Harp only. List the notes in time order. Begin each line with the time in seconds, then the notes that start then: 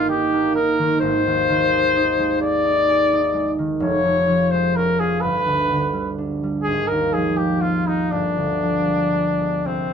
Already playing: G1 G2 D#3 A#3
0.09 D#4
0.33 A#3
0.55 D#4
0.79 D#3
1.02 G#1
1.26 D#2
1.49 D#3
1.72 G#3
1.96 D#4
2.19 G#3
2.41 G#4
2.64 D#4
2.89 G#4
3.13 D#4
3.34 G#3
3.59 D#3
3.80 F1
4.03 F2
4.28 F3
4.54 G#3
4.78 C#4
5.00 F4
5.23 G1
5.46 D2
5.70 D3
5.93 G3
6.18 D4
6.43 G3
6.67 G#1
6.92 D#2
7.14 F3
7.39 G#3
7.64 C4
7.88 F4
8.12 G1
8.37 D2
8.62 F3
8.87 G#3
9.13 B3
9.39 G#3
9.65 C2